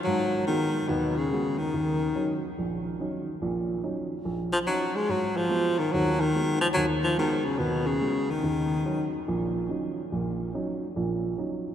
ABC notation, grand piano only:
X:1
M:4/4
L:1/8
Q:"Swing" 1/4=143
K:Ebm
V:1 name="Grand piano" clef=bass
A,,2 [A,CG] z [E,,E,]2 [A,CG] z | E,,2 [G,DE] z B,,,2 [G,DE] z | [B,,,B,,]2 [G,DE] z B,,,2 [G,DE] z | A,,2 [A,CG] z [E,,E,]2 [A,CG] z |
[E,,E,]2 [A,CG] z E,,2 [A,CG] z | [E,,E,]2 [G,DE] z [B,,,B,,]2 [G,DE] z | [B,,,B,,]2 [G,DE] z [B,,,B,,]2 [G,DE] z |]